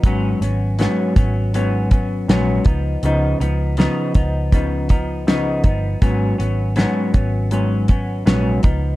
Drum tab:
HH |xxxxxxxx|xxxxxxxx|xxxxxxxx|
SD |--o---o-|--o---o-|--o---o-|
BD |o--o-o-o|---ooo-o|o--o-o-o|